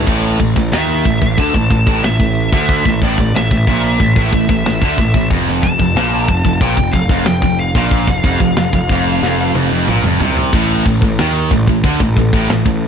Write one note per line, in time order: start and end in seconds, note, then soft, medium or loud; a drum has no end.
0.06 0.38 A1 loud
0.06 0.39 A2 loud
0.06 kick loud
0.06 crash loud
0.40 0.55 A1 medium
0.40 0.55 A2 medium
0.40 kick medium
0.56 0.72 A1 medium
0.56 0.72 A2 medium
0.56 kick medium
0.72 1.04 D#2 medium
0.72 1.04 D#3 loud
0.72 1.36 E5 loud
0.72 snare loud
0.72 open hi-hat medium
1.05 1.21 A1 medium
1.05 1.21 A2 medium
1.05 kick loud
1.22 1.37 A1 medium
1.22 1.37 A2 medium
1.22 kick medium
1.38 1.54 D2 medium
1.38 1.53 D3 loud
1.38 2.03 A5 loud
1.38 kick loud
1.38 open hi-hat medium
1.54 1.70 A1 medium
1.54 1.70 A2 medium
1.54 kick loud
1.70 1.86 A1 medium
1.70 1.87 A2 medium
1.70 kick medium
1.87 2.02 A1 medium
1.87 2.03 A2 medium
1.87 kick loud
2.03 2.19 A1 medium
2.03 2.19 A2 medium
2.03 2.99 E5 medium
2.03 snare loud
2.03 open hi-hat medium
2.20 2.50 A1 medium
2.20 2.46 A2 medium
2.20 kick medium
2.52 2.83 D2 loud
2.52 2.85 D3 loud
2.52 kick loud
2.52 snare soft
2.69 kick loud
2.69 open hi-hat medium
2.85 3.01 A1 medium
2.85 3.02 A2 medium
2.85 kick medium
2.85 snare soft
3.02 3.17 A1 medium
3.02 3.18 A2 loud
3.02 3.34 D5 medium
3.02 kick loud
3.18 3.33 A1 medium
3.18 3.34 A2 medium
3.18 kick medium
3.34 3.49 A1 medium
3.34 3.51 A2 medium
3.34 5.27 E5 loud
3.34 snare loud
3.34 open hi-hat medium
3.51 3.66 A1 medium
3.51 3.67 A2 medium
3.51 kick medium
3.67 3.98 A#1 loud
3.67 3.99 A#2 loud
3.67 kick loud
4.00 4.15 A1 medium
4.00 4.16 A2 medium
4.00 kick medium
4.00 open hi-hat medium
4.16 4.31 A1 medium
4.16 4.32 A2 loud
4.16 kick loud
4.33 4.48 A1 medium
4.33 4.48 A2 medium
4.33 kick medium
4.49 4.64 A1 medium
4.49 4.64 A2 medium
4.49 kick loud
4.65 4.81 A1 medium
4.65 4.81 A2 medium
4.65 snare loud
4.65 open hi-hat medium
4.81 4.97 D2 loud
4.81 4.97 D3 loud
4.81 kick loud
4.98 5.13 A1 medium
4.98 5.13 A2 medium
4.98 kick loud
5.14 5.30 A1 medium
5.14 5.31 A2 medium
5.14 kick loud
5.30 5.61 F1 loud
5.30 5.62 F2 loud
5.30 kick loud
5.30 open hi-hat medium
5.48 snare soft
5.63 5.79 F1 medium
5.63 5.78 F2 medium
5.63 6.59 A5 loud
5.63 kick medium
5.79 5.95 F1 medium
5.79 5.96 F2 medium
5.79 kick medium
5.96 6.26 A#1 loud
5.96 6.28 A#2 loud
5.96 snare loud
5.96 open hi-hat medium
6.28 6.44 F1 medium
6.28 6.43 F2 medium
6.28 kick medium
6.45 6.60 F1 medium
6.45 6.61 F2 medium
6.45 kick medium
6.61 6.76 A#1 loud
6.61 6.77 A#2 loud
6.61 6.93 G5 loud
6.61 kick loud
6.61 open hi-hat medium
6.77 6.93 F1 medium
6.77 6.92 F2 medium
6.77 kick medium
6.93 7.09 F1 medium
6.93 7.08 F2 medium
6.93 7.25 F5 loud
6.93 kick loud
7.09 7.25 F1 medium
7.09 7.25 F2 loud
7.09 kick loud
7.25 7.42 F1 medium
7.25 7.42 F2 medium
7.25 7.59 G5 loud
7.25 snare loud
7.25 open hi-hat medium
7.42 7.73 F1 medium
7.42 7.69 F2 medium
7.42 kick loud
7.59 9.52 F5 loud
7.75 8.06 A#1 loud
7.75 8.07 A#2 loud
7.75 kick loud
7.75 snare soft
7.91 kick loud
7.91 open hi-hat medium
8.07 8.23 F1 medium
8.07 8.24 F2 medium
8.07 kick loud
8.07 snare soft
8.24 8.40 F1 loud
8.24 8.41 F2 loud
8.24 kick loud
8.40 8.56 F1 medium
8.40 8.57 F2 medium
8.40 kick medium
8.56 8.73 F1 medium
8.56 8.74 F2 medium
8.56 snare loud
8.56 open hi-hat medium
8.73 8.89 F1 medium
8.73 8.90 F2 medium
8.73 kick medium
8.89 9.20 F1 medium
8.89 9.22 F2 loud
8.89 kick loud
9.22 9.53 F1 medium
9.22 9.55 F2 loud
9.22 snare medium
9.54 9.70 F1 loud
9.54 9.71 F2 loud
9.54 high tom medium
9.71 9.87 F1 medium
9.71 9.88 F2 loud
9.88 10.04 A#1 medium
9.88 10.04 A#2 loud
9.88 mid tom loud
10.04 10.20 F1 loud
10.04 10.21 F2 loud
10.04 mid tom medium
10.20 10.52 C2 loud
10.20 10.54 C3 loud
10.20 floor tom loud
10.37 floor tom loud
10.53 10.84 A1 loud
10.53 10.86 A2 loud
10.53 kick loud
10.53 crash loud
10.86 11.01 A1 medium
10.86 11.02 A2 medium
10.86 kick medium
11.02 11.18 A1 medium
11.02 11.19 A2 medium
11.02 kick medium
11.18 11.50 D#2 loud
11.18 11.51 D#3 loud
11.18 snare loud
11.18 open hi-hat medium
11.51 11.67 A1 medium
11.51 11.68 A2 medium
11.51 kick medium
11.67 11.83 A1 medium
11.67 11.84 A2 medium
11.67 kick medium
11.84 12.00 D2 medium
11.84 12.00 D3 loud
11.84 kick loud
11.84 open hi-hat medium
12.00 12.16 A1 medium
12.00 12.17 A2 medium
12.00 kick medium
12.17 12.32 A1 medium
12.17 12.33 A2 medium
12.17 kick medium
12.33 12.49 A1 medium
12.33 12.48 A2 loud
12.33 kick loud
12.49 12.65 A1 medium
12.49 12.64 A2 medium
12.49 snare loud
12.49 open hi-hat medium
12.65 12.88 A1 medium
12.65 12.88 A2 medium
12.65 kick medium